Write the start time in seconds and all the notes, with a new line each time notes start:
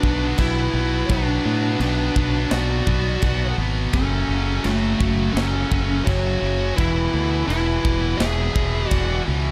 Already playing: D4 B4
0.03 B1 B2 F#3 B3, kick
0.38 B1 B2 F#3 B3 E4 B4, kick, china
0.73 B1 B2 F#3 B3
1.08 B1 B2 F#3 B3 D4 B4, kick, china
1.45 A2 B2 F#3 B3
1.80 B1 B2 F#3 B3 D4 B4, china
2.16 B1 B2 F#3 B3, kick
2.51 B1 B2 F#3 B3 F#4 D5, snare, china
2.87 B1 B2 F#3 B3, kick
3.22 B1 B2 F#3 B3, kick, china
3.58 G#1 B2 F#3 B3
3.92 F#1 F#2 C#3 F#3 C#4 A4, kick, china
4.28 F#1 F#2 C#3 F#3
4.64 F#1 F#2 C#3 F#3 A3 F#4, china
5.00 F#1 F#2 C#3 F#3, kick
5.33 F#1 F#2 C#3 F#3 C#4 A4, china
5.37 snare
5.71 F#1 F#2 C#3 F#3, kick
6.04 F#1 F#2 C#3 F#3 F#4 C#5, kick, china
6.40 F#1 F#2 C#3 F#3
6.76 E1 E2 B2 E3 E4 B4, kick, china
7.11 D2 E2 B2 E3
7.46 E1 E2 B2 E3 E4 B4, china
7.83 E1 E2 B2 E3, kick
8.17 E1 E2 B2 E3 G#4 E5, snare, china
8.54 E1 E2 B2 E3, kick
8.89 E1 E2 B2 E3 F#4 D5, kick, china
9.26 C#2 E2 B2 E3